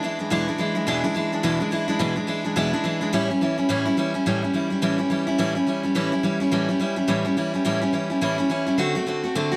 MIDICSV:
0, 0, Header, 1, 2, 480
1, 0, Start_track
1, 0, Tempo, 282486
1, 1487, Time_signature, 4, 2, 24, 8
1, 16256, End_track
2, 0, Start_track
2, 0, Title_t, "Steel-string acoustic guitar"
2, 0, Program_c, 0, 25
2, 45, Note_on_c, 0, 52, 59
2, 64, Note_on_c, 0, 56, 72
2, 75, Note_on_c, 0, 62, 73
2, 82, Note_on_c, 0, 64, 67
2, 298, Note_off_c, 0, 64, 0
2, 312, Note_off_c, 0, 62, 0
2, 319, Note_on_c, 0, 64, 51
2, 324, Note_off_c, 0, 56, 0
2, 328, Note_off_c, 0, 52, 0
2, 332, Note_on_c, 0, 62, 55
2, 344, Note_on_c, 0, 56, 56
2, 348, Note_on_c, 0, 52, 45
2, 506, Note_off_c, 0, 52, 0
2, 512, Note_off_c, 0, 56, 0
2, 515, Note_on_c, 0, 40, 95
2, 517, Note_off_c, 0, 62, 0
2, 522, Note_off_c, 0, 64, 0
2, 526, Note_on_c, 0, 47, 79
2, 526, Note_on_c, 0, 52, 88
2, 532, Note_on_c, 0, 56, 96
2, 537, Note_on_c, 0, 62, 107
2, 542, Note_on_c, 0, 64, 112
2, 790, Note_off_c, 0, 64, 0
2, 803, Note_off_c, 0, 62, 0
2, 808, Note_off_c, 0, 40, 0
2, 810, Note_off_c, 0, 56, 0
2, 810, Note_on_c, 0, 64, 62
2, 813, Note_off_c, 0, 47, 0
2, 813, Note_off_c, 0, 52, 0
2, 823, Note_on_c, 0, 62, 60
2, 831, Note_on_c, 0, 56, 55
2, 842, Note_on_c, 0, 52, 52
2, 969, Note_off_c, 0, 52, 0
2, 985, Note_off_c, 0, 56, 0
2, 989, Note_on_c, 0, 52, 71
2, 998, Note_off_c, 0, 62, 0
2, 1006, Note_off_c, 0, 64, 0
2, 1006, Note_on_c, 0, 56, 76
2, 1018, Note_on_c, 0, 62, 74
2, 1028, Note_on_c, 0, 64, 85
2, 1253, Note_off_c, 0, 64, 0
2, 1268, Note_off_c, 0, 62, 0
2, 1273, Note_on_c, 0, 64, 73
2, 1278, Note_off_c, 0, 56, 0
2, 1283, Note_off_c, 0, 52, 0
2, 1289, Note_on_c, 0, 62, 56
2, 1298, Note_on_c, 0, 56, 56
2, 1310, Note_on_c, 0, 52, 47
2, 1469, Note_off_c, 0, 52, 0
2, 1470, Note_off_c, 0, 56, 0
2, 1473, Note_on_c, 0, 40, 95
2, 1474, Note_off_c, 0, 62, 0
2, 1476, Note_off_c, 0, 64, 0
2, 1478, Note_on_c, 0, 47, 82
2, 1490, Note_on_c, 0, 52, 109
2, 1490, Note_on_c, 0, 56, 102
2, 1494, Note_on_c, 0, 62, 87
2, 1499, Note_on_c, 0, 64, 99
2, 1741, Note_off_c, 0, 64, 0
2, 1753, Note_off_c, 0, 62, 0
2, 1760, Note_off_c, 0, 56, 0
2, 1761, Note_on_c, 0, 64, 67
2, 1764, Note_off_c, 0, 40, 0
2, 1767, Note_off_c, 0, 47, 0
2, 1772, Note_off_c, 0, 52, 0
2, 1773, Note_on_c, 0, 62, 66
2, 1780, Note_on_c, 0, 56, 54
2, 1792, Note_on_c, 0, 52, 47
2, 1926, Note_off_c, 0, 52, 0
2, 1943, Note_off_c, 0, 56, 0
2, 1947, Note_on_c, 0, 52, 69
2, 1950, Note_off_c, 0, 62, 0
2, 1959, Note_off_c, 0, 64, 0
2, 1964, Note_on_c, 0, 56, 67
2, 1971, Note_on_c, 0, 62, 63
2, 1984, Note_on_c, 0, 64, 77
2, 2226, Note_off_c, 0, 64, 0
2, 2236, Note_off_c, 0, 62, 0
2, 2240, Note_off_c, 0, 52, 0
2, 2247, Note_on_c, 0, 64, 51
2, 2248, Note_off_c, 0, 56, 0
2, 2257, Note_on_c, 0, 62, 54
2, 2269, Note_on_c, 0, 56, 57
2, 2278, Note_on_c, 0, 52, 45
2, 2422, Note_off_c, 0, 52, 0
2, 2427, Note_off_c, 0, 56, 0
2, 2430, Note_off_c, 0, 62, 0
2, 2433, Note_on_c, 0, 40, 91
2, 2438, Note_on_c, 0, 47, 101
2, 2441, Note_off_c, 0, 64, 0
2, 2443, Note_on_c, 0, 52, 97
2, 2447, Note_on_c, 0, 56, 101
2, 2451, Note_on_c, 0, 62, 100
2, 2458, Note_on_c, 0, 64, 101
2, 2696, Note_off_c, 0, 64, 0
2, 2708, Note_off_c, 0, 62, 0
2, 2716, Note_on_c, 0, 64, 59
2, 2720, Note_off_c, 0, 56, 0
2, 2722, Note_off_c, 0, 40, 0
2, 2724, Note_off_c, 0, 47, 0
2, 2727, Note_off_c, 0, 52, 0
2, 2728, Note_on_c, 0, 62, 64
2, 2741, Note_on_c, 0, 56, 61
2, 2750, Note_on_c, 0, 52, 54
2, 2884, Note_off_c, 0, 52, 0
2, 2903, Note_off_c, 0, 56, 0
2, 2905, Note_on_c, 0, 52, 66
2, 2910, Note_off_c, 0, 62, 0
2, 2915, Note_off_c, 0, 64, 0
2, 2923, Note_on_c, 0, 56, 80
2, 2930, Note_on_c, 0, 62, 76
2, 2940, Note_on_c, 0, 64, 89
2, 3172, Note_off_c, 0, 64, 0
2, 3190, Note_off_c, 0, 62, 0
2, 3192, Note_on_c, 0, 64, 69
2, 3197, Note_off_c, 0, 52, 0
2, 3198, Note_off_c, 0, 56, 0
2, 3211, Note_on_c, 0, 62, 64
2, 3219, Note_on_c, 0, 56, 56
2, 3228, Note_on_c, 0, 52, 53
2, 3372, Note_off_c, 0, 52, 0
2, 3379, Note_off_c, 0, 56, 0
2, 3379, Note_off_c, 0, 62, 0
2, 3384, Note_on_c, 0, 40, 90
2, 3388, Note_off_c, 0, 64, 0
2, 3392, Note_on_c, 0, 47, 83
2, 3392, Note_on_c, 0, 52, 83
2, 3399, Note_on_c, 0, 56, 83
2, 3399, Note_on_c, 0, 62, 97
2, 3408, Note_on_c, 0, 64, 101
2, 3643, Note_off_c, 0, 64, 0
2, 3648, Note_off_c, 0, 62, 0
2, 3663, Note_off_c, 0, 56, 0
2, 3663, Note_on_c, 0, 64, 57
2, 3668, Note_on_c, 0, 62, 58
2, 3674, Note_off_c, 0, 52, 0
2, 3676, Note_off_c, 0, 40, 0
2, 3679, Note_off_c, 0, 47, 0
2, 3684, Note_on_c, 0, 56, 51
2, 3694, Note_on_c, 0, 52, 49
2, 3838, Note_off_c, 0, 52, 0
2, 3854, Note_off_c, 0, 56, 0
2, 3858, Note_on_c, 0, 52, 66
2, 3860, Note_off_c, 0, 62, 0
2, 3866, Note_off_c, 0, 64, 0
2, 3874, Note_on_c, 0, 56, 77
2, 3881, Note_on_c, 0, 62, 71
2, 3891, Note_on_c, 0, 64, 69
2, 4131, Note_off_c, 0, 64, 0
2, 4144, Note_off_c, 0, 62, 0
2, 4151, Note_on_c, 0, 64, 59
2, 4152, Note_off_c, 0, 52, 0
2, 4155, Note_off_c, 0, 56, 0
2, 4164, Note_on_c, 0, 62, 53
2, 4175, Note_on_c, 0, 56, 55
2, 4181, Note_on_c, 0, 52, 51
2, 4337, Note_off_c, 0, 52, 0
2, 4342, Note_off_c, 0, 56, 0
2, 4345, Note_off_c, 0, 62, 0
2, 4347, Note_on_c, 0, 40, 101
2, 4349, Note_off_c, 0, 64, 0
2, 4352, Note_on_c, 0, 47, 91
2, 4357, Note_on_c, 0, 52, 90
2, 4362, Note_on_c, 0, 56, 90
2, 4366, Note_on_c, 0, 62, 104
2, 4369, Note_on_c, 0, 64, 103
2, 4616, Note_off_c, 0, 64, 0
2, 4629, Note_off_c, 0, 62, 0
2, 4635, Note_off_c, 0, 40, 0
2, 4636, Note_on_c, 0, 64, 66
2, 4638, Note_off_c, 0, 47, 0
2, 4641, Note_off_c, 0, 52, 0
2, 4643, Note_off_c, 0, 56, 0
2, 4649, Note_on_c, 0, 62, 73
2, 4662, Note_on_c, 0, 56, 61
2, 4668, Note_on_c, 0, 52, 53
2, 4802, Note_off_c, 0, 52, 0
2, 4820, Note_off_c, 0, 56, 0
2, 4822, Note_on_c, 0, 52, 74
2, 4827, Note_off_c, 0, 62, 0
2, 4831, Note_off_c, 0, 64, 0
2, 4840, Note_on_c, 0, 56, 69
2, 4848, Note_on_c, 0, 62, 73
2, 4856, Note_on_c, 0, 64, 78
2, 5090, Note_off_c, 0, 64, 0
2, 5104, Note_off_c, 0, 62, 0
2, 5111, Note_on_c, 0, 64, 63
2, 5112, Note_off_c, 0, 52, 0
2, 5116, Note_off_c, 0, 56, 0
2, 5124, Note_on_c, 0, 62, 63
2, 5137, Note_on_c, 0, 56, 67
2, 5146, Note_on_c, 0, 52, 55
2, 5298, Note_off_c, 0, 52, 0
2, 5308, Note_off_c, 0, 64, 0
2, 5312, Note_on_c, 0, 45, 92
2, 5314, Note_off_c, 0, 62, 0
2, 5315, Note_off_c, 0, 56, 0
2, 5319, Note_on_c, 0, 52, 82
2, 5322, Note_on_c, 0, 55, 97
2, 5328, Note_on_c, 0, 61, 91
2, 5334, Note_on_c, 0, 64, 112
2, 5584, Note_off_c, 0, 64, 0
2, 5597, Note_off_c, 0, 45, 0
2, 5597, Note_off_c, 0, 61, 0
2, 5600, Note_off_c, 0, 52, 0
2, 5602, Note_off_c, 0, 55, 0
2, 5605, Note_on_c, 0, 64, 63
2, 5617, Note_on_c, 0, 61, 63
2, 5632, Note_on_c, 0, 55, 51
2, 5789, Note_off_c, 0, 55, 0
2, 5794, Note_off_c, 0, 64, 0
2, 5797, Note_on_c, 0, 52, 63
2, 5801, Note_off_c, 0, 61, 0
2, 5809, Note_on_c, 0, 55, 68
2, 5819, Note_on_c, 0, 61, 69
2, 5828, Note_on_c, 0, 64, 72
2, 6054, Note_off_c, 0, 64, 0
2, 6071, Note_off_c, 0, 61, 0
2, 6074, Note_on_c, 0, 64, 55
2, 6079, Note_off_c, 0, 52, 0
2, 6085, Note_off_c, 0, 55, 0
2, 6091, Note_on_c, 0, 61, 57
2, 6107, Note_on_c, 0, 55, 49
2, 6259, Note_off_c, 0, 55, 0
2, 6265, Note_off_c, 0, 61, 0
2, 6265, Note_on_c, 0, 45, 89
2, 6269, Note_off_c, 0, 64, 0
2, 6271, Note_on_c, 0, 52, 100
2, 6279, Note_on_c, 0, 55, 100
2, 6286, Note_on_c, 0, 61, 105
2, 6288, Note_on_c, 0, 64, 99
2, 6529, Note_off_c, 0, 64, 0
2, 6548, Note_off_c, 0, 61, 0
2, 6550, Note_on_c, 0, 64, 71
2, 6553, Note_off_c, 0, 45, 0
2, 6556, Note_off_c, 0, 52, 0
2, 6560, Note_off_c, 0, 55, 0
2, 6568, Note_on_c, 0, 61, 55
2, 6580, Note_on_c, 0, 55, 54
2, 6736, Note_off_c, 0, 55, 0
2, 6746, Note_off_c, 0, 64, 0
2, 6747, Note_on_c, 0, 52, 65
2, 6749, Note_off_c, 0, 61, 0
2, 6757, Note_on_c, 0, 55, 78
2, 6769, Note_on_c, 0, 61, 73
2, 6779, Note_on_c, 0, 64, 79
2, 7013, Note_off_c, 0, 64, 0
2, 7029, Note_off_c, 0, 61, 0
2, 7033, Note_off_c, 0, 52, 0
2, 7034, Note_on_c, 0, 64, 63
2, 7038, Note_off_c, 0, 55, 0
2, 7050, Note_on_c, 0, 61, 65
2, 7067, Note_on_c, 0, 55, 49
2, 7227, Note_off_c, 0, 55, 0
2, 7228, Note_off_c, 0, 64, 0
2, 7236, Note_off_c, 0, 61, 0
2, 7238, Note_on_c, 0, 45, 89
2, 7245, Note_on_c, 0, 52, 91
2, 7247, Note_on_c, 0, 55, 84
2, 7255, Note_on_c, 0, 61, 86
2, 7259, Note_on_c, 0, 64, 95
2, 7497, Note_off_c, 0, 64, 0
2, 7517, Note_on_c, 0, 64, 59
2, 7519, Note_off_c, 0, 45, 0
2, 7519, Note_off_c, 0, 61, 0
2, 7523, Note_off_c, 0, 52, 0
2, 7524, Note_off_c, 0, 55, 0
2, 7540, Note_on_c, 0, 61, 55
2, 7551, Note_on_c, 0, 55, 53
2, 7697, Note_off_c, 0, 55, 0
2, 7705, Note_off_c, 0, 61, 0
2, 7706, Note_on_c, 0, 52, 57
2, 7710, Note_off_c, 0, 64, 0
2, 7717, Note_on_c, 0, 55, 69
2, 7725, Note_on_c, 0, 61, 66
2, 7737, Note_on_c, 0, 64, 71
2, 7966, Note_off_c, 0, 64, 0
2, 7987, Note_off_c, 0, 61, 0
2, 7987, Note_on_c, 0, 64, 55
2, 7993, Note_off_c, 0, 52, 0
2, 7999, Note_off_c, 0, 55, 0
2, 8007, Note_on_c, 0, 61, 47
2, 8022, Note_on_c, 0, 55, 50
2, 8177, Note_off_c, 0, 55, 0
2, 8185, Note_off_c, 0, 64, 0
2, 8185, Note_on_c, 0, 45, 84
2, 8187, Note_off_c, 0, 61, 0
2, 8193, Note_on_c, 0, 52, 101
2, 8197, Note_on_c, 0, 55, 81
2, 8207, Note_on_c, 0, 61, 98
2, 8207, Note_on_c, 0, 64, 95
2, 8440, Note_off_c, 0, 64, 0
2, 8460, Note_off_c, 0, 61, 0
2, 8461, Note_on_c, 0, 64, 65
2, 8473, Note_off_c, 0, 45, 0
2, 8473, Note_off_c, 0, 55, 0
2, 8477, Note_off_c, 0, 52, 0
2, 8481, Note_on_c, 0, 61, 61
2, 8493, Note_on_c, 0, 55, 53
2, 8656, Note_off_c, 0, 55, 0
2, 8662, Note_off_c, 0, 64, 0
2, 8663, Note_on_c, 0, 52, 70
2, 8666, Note_off_c, 0, 61, 0
2, 8676, Note_on_c, 0, 55, 80
2, 8686, Note_on_c, 0, 61, 70
2, 8697, Note_on_c, 0, 64, 76
2, 8930, Note_off_c, 0, 64, 0
2, 8947, Note_off_c, 0, 61, 0
2, 8951, Note_on_c, 0, 64, 67
2, 8952, Note_off_c, 0, 52, 0
2, 8959, Note_off_c, 0, 55, 0
2, 8967, Note_on_c, 0, 61, 60
2, 8980, Note_on_c, 0, 55, 55
2, 9137, Note_off_c, 0, 55, 0
2, 9144, Note_off_c, 0, 61, 0
2, 9147, Note_on_c, 0, 45, 86
2, 9148, Note_off_c, 0, 64, 0
2, 9153, Note_on_c, 0, 52, 85
2, 9157, Note_on_c, 0, 55, 90
2, 9164, Note_on_c, 0, 61, 92
2, 9165, Note_on_c, 0, 64, 93
2, 9408, Note_off_c, 0, 64, 0
2, 9429, Note_on_c, 0, 64, 65
2, 9434, Note_off_c, 0, 61, 0
2, 9435, Note_off_c, 0, 45, 0
2, 9438, Note_off_c, 0, 52, 0
2, 9440, Note_off_c, 0, 55, 0
2, 9454, Note_on_c, 0, 61, 59
2, 9467, Note_on_c, 0, 55, 53
2, 9619, Note_off_c, 0, 55, 0
2, 9627, Note_off_c, 0, 64, 0
2, 9627, Note_on_c, 0, 52, 59
2, 9631, Note_off_c, 0, 61, 0
2, 9640, Note_on_c, 0, 55, 65
2, 9651, Note_on_c, 0, 61, 66
2, 9662, Note_on_c, 0, 64, 70
2, 9891, Note_off_c, 0, 64, 0
2, 9908, Note_off_c, 0, 61, 0
2, 9911, Note_on_c, 0, 64, 54
2, 9916, Note_off_c, 0, 52, 0
2, 9922, Note_off_c, 0, 55, 0
2, 9928, Note_on_c, 0, 61, 56
2, 9942, Note_on_c, 0, 55, 49
2, 10099, Note_off_c, 0, 55, 0
2, 10104, Note_off_c, 0, 61, 0
2, 10105, Note_on_c, 0, 45, 83
2, 10109, Note_off_c, 0, 64, 0
2, 10114, Note_on_c, 0, 52, 90
2, 10120, Note_on_c, 0, 55, 84
2, 10124, Note_on_c, 0, 61, 100
2, 10128, Note_on_c, 0, 64, 106
2, 10377, Note_off_c, 0, 64, 0
2, 10395, Note_off_c, 0, 45, 0
2, 10395, Note_off_c, 0, 61, 0
2, 10397, Note_on_c, 0, 64, 59
2, 10399, Note_off_c, 0, 52, 0
2, 10402, Note_off_c, 0, 55, 0
2, 10415, Note_on_c, 0, 61, 58
2, 10427, Note_on_c, 0, 55, 48
2, 10581, Note_off_c, 0, 55, 0
2, 10589, Note_on_c, 0, 52, 69
2, 10591, Note_off_c, 0, 61, 0
2, 10593, Note_off_c, 0, 64, 0
2, 10601, Note_on_c, 0, 55, 65
2, 10611, Note_on_c, 0, 61, 72
2, 10621, Note_on_c, 0, 64, 67
2, 10854, Note_off_c, 0, 64, 0
2, 10875, Note_on_c, 0, 64, 60
2, 10876, Note_off_c, 0, 61, 0
2, 10878, Note_off_c, 0, 52, 0
2, 10884, Note_off_c, 0, 55, 0
2, 10897, Note_on_c, 0, 61, 63
2, 10914, Note_on_c, 0, 55, 53
2, 11066, Note_off_c, 0, 55, 0
2, 11067, Note_off_c, 0, 61, 0
2, 11068, Note_on_c, 0, 45, 78
2, 11072, Note_off_c, 0, 64, 0
2, 11075, Note_on_c, 0, 52, 89
2, 11086, Note_on_c, 0, 55, 94
2, 11088, Note_on_c, 0, 61, 80
2, 11094, Note_on_c, 0, 64, 88
2, 11337, Note_off_c, 0, 64, 0
2, 11357, Note_on_c, 0, 64, 62
2, 11358, Note_off_c, 0, 45, 0
2, 11358, Note_off_c, 0, 61, 0
2, 11362, Note_off_c, 0, 52, 0
2, 11367, Note_off_c, 0, 55, 0
2, 11379, Note_on_c, 0, 61, 55
2, 11394, Note_on_c, 0, 55, 57
2, 11542, Note_off_c, 0, 55, 0
2, 11547, Note_on_c, 0, 52, 75
2, 11551, Note_off_c, 0, 61, 0
2, 11554, Note_off_c, 0, 64, 0
2, 11562, Note_on_c, 0, 55, 68
2, 11571, Note_on_c, 0, 61, 76
2, 11585, Note_on_c, 0, 64, 69
2, 11809, Note_off_c, 0, 64, 0
2, 11824, Note_off_c, 0, 61, 0
2, 11830, Note_on_c, 0, 64, 66
2, 11838, Note_off_c, 0, 52, 0
2, 11839, Note_off_c, 0, 55, 0
2, 11844, Note_on_c, 0, 61, 57
2, 11860, Note_on_c, 0, 55, 41
2, 12016, Note_off_c, 0, 55, 0
2, 12020, Note_off_c, 0, 61, 0
2, 12023, Note_on_c, 0, 45, 97
2, 12031, Note_off_c, 0, 64, 0
2, 12031, Note_on_c, 0, 52, 93
2, 12036, Note_on_c, 0, 55, 95
2, 12041, Note_on_c, 0, 61, 95
2, 12049, Note_on_c, 0, 64, 97
2, 12292, Note_off_c, 0, 64, 0
2, 12307, Note_off_c, 0, 61, 0
2, 12313, Note_on_c, 0, 64, 66
2, 12317, Note_off_c, 0, 45, 0
2, 12321, Note_off_c, 0, 52, 0
2, 12323, Note_off_c, 0, 55, 0
2, 12328, Note_on_c, 0, 61, 65
2, 12347, Note_on_c, 0, 55, 56
2, 12510, Note_off_c, 0, 55, 0
2, 12513, Note_off_c, 0, 64, 0
2, 12519, Note_on_c, 0, 52, 66
2, 12521, Note_off_c, 0, 61, 0
2, 12530, Note_on_c, 0, 55, 77
2, 12539, Note_on_c, 0, 61, 73
2, 12546, Note_on_c, 0, 64, 75
2, 12785, Note_off_c, 0, 64, 0
2, 12801, Note_off_c, 0, 61, 0
2, 12805, Note_off_c, 0, 52, 0
2, 12806, Note_on_c, 0, 64, 60
2, 12811, Note_off_c, 0, 55, 0
2, 12821, Note_on_c, 0, 61, 56
2, 12837, Note_on_c, 0, 55, 54
2, 12984, Note_off_c, 0, 55, 0
2, 12988, Note_off_c, 0, 61, 0
2, 12992, Note_off_c, 0, 64, 0
2, 12992, Note_on_c, 0, 45, 87
2, 13000, Note_on_c, 0, 52, 83
2, 13005, Note_on_c, 0, 55, 96
2, 13008, Note_on_c, 0, 61, 91
2, 13013, Note_on_c, 0, 64, 91
2, 13258, Note_off_c, 0, 64, 0
2, 13275, Note_off_c, 0, 61, 0
2, 13278, Note_on_c, 0, 64, 64
2, 13283, Note_off_c, 0, 45, 0
2, 13287, Note_off_c, 0, 52, 0
2, 13289, Note_off_c, 0, 55, 0
2, 13295, Note_on_c, 0, 61, 61
2, 13309, Note_on_c, 0, 55, 47
2, 13463, Note_off_c, 0, 55, 0
2, 13467, Note_off_c, 0, 61, 0
2, 13469, Note_on_c, 0, 52, 64
2, 13477, Note_off_c, 0, 64, 0
2, 13483, Note_on_c, 0, 55, 60
2, 13487, Note_on_c, 0, 61, 70
2, 13498, Note_on_c, 0, 64, 62
2, 13738, Note_off_c, 0, 64, 0
2, 13759, Note_on_c, 0, 64, 52
2, 13760, Note_off_c, 0, 61, 0
2, 13762, Note_off_c, 0, 52, 0
2, 13769, Note_off_c, 0, 55, 0
2, 13780, Note_on_c, 0, 61, 50
2, 13792, Note_on_c, 0, 55, 45
2, 13943, Note_off_c, 0, 55, 0
2, 13949, Note_off_c, 0, 61, 0
2, 13955, Note_off_c, 0, 64, 0
2, 13956, Note_on_c, 0, 45, 89
2, 13962, Note_on_c, 0, 52, 81
2, 13963, Note_on_c, 0, 55, 99
2, 13970, Note_on_c, 0, 61, 94
2, 13975, Note_on_c, 0, 64, 94
2, 14217, Note_off_c, 0, 64, 0
2, 14237, Note_on_c, 0, 64, 66
2, 14238, Note_off_c, 0, 61, 0
2, 14247, Note_off_c, 0, 45, 0
2, 14249, Note_off_c, 0, 52, 0
2, 14250, Note_off_c, 0, 55, 0
2, 14258, Note_on_c, 0, 61, 60
2, 14273, Note_on_c, 0, 55, 53
2, 14424, Note_off_c, 0, 55, 0
2, 14434, Note_on_c, 0, 52, 69
2, 14436, Note_off_c, 0, 61, 0
2, 14439, Note_off_c, 0, 64, 0
2, 14445, Note_on_c, 0, 55, 71
2, 14457, Note_on_c, 0, 61, 77
2, 14467, Note_on_c, 0, 64, 76
2, 14702, Note_off_c, 0, 64, 0
2, 14720, Note_off_c, 0, 61, 0
2, 14722, Note_on_c, 0, 64, 63
2, 14726, Note_off_c, 0, 52, 0
2, 14732, Note_off_c, 0, 55, 0
2, 14740, Note_on_c, 0, 61, 62
2, 14754, Note_on_c, 0, 55, 53
2, 14914, Note_on_c, 0, 50, 82
2, 14917, Note_off_c, 0, 55, 0
2, 14922, Note_off_c, 0, 64, 0
2, 14924, Note_on_c, 0, 57, 95
2, 14926, Note_off_c, 0, 61, 0
2, 14932, Note_on_c, 0, 60, 88
2, 14940, Note_on_c, 0, 66, 99
2, 15184, Note_off_c, 0, 66, 0
2, 15203, Note_off_c, 0, 60, 0
2, 15205, Note_on_c, 0, 66, 60
2, 15207, Note_off_c, 0, 50, 0
2, 15212, Note_off_c, 0, 57, 0
2, 15224, Note_on_c, 0, 60, 60
2, 15241, Note_on_c, 0, 57, 55
2, 15392, Note_off_c, 0, 57, 0
2, 15402, Note_on_c, 0, 50, 59
2, 15404, Note_off_c, 0, 66, 0
2, 15409, Note_off_c, 0, 60, 0
2, 15413, Note_on_c, 0, 57, 70
2, 15430, Note_on_c, 0, 60, 70
2, 15434, Note_on_c, 0, 66, 63
2, 15672, Note_off_c, 0, 66, 0
2, 15690, Note_off_c, 0, 60, 0
2, 15692, Note_on_c, 0, 66, 57
2, 15693, Note_off_c, 0, 50, 0
2, 15698, Note_off_c, 0, 57, 0
2, 15711, Note_on_c, 0, 60, 48
2, 15723, Note_on_c, 0, 57, 43
2, 15878, Note_off_c, 0, 57, 0
2, 15886, Note_off_c, 0, 60, 0
2, 15889, Note_off_c, 0, 66, 0
2, 15894, Note_on_c, 0, 50, 97
2, 15898, Note_on_c, 0, 57, 98
2, 15907, Note_on_c, 0, 60, 87
2, 15911, Note_on_c, 0, 66, 94
2, 16148, Note_off_c, 0, 66, 0
2, 16168, Note_off_c, 0, 60, 0
2, 16168, Note_on_c, 0, 66, 69
2, 16180, Note_off_c, 0, 50, 0
2, 16182, Note_off_c, 0, 57, 0
2, 16188, Note_on_c, 0, 60, 59
2, 16201, Note_on_c, 0, 57, 47
2, 16256, Note_off_c, 0, 57, 0
2, 16256, Note_off_c, 0, 60, 0
2, 16256, Note_off_c, 0, 66, 0
2, 16256, End_track
0, 0, End_of_file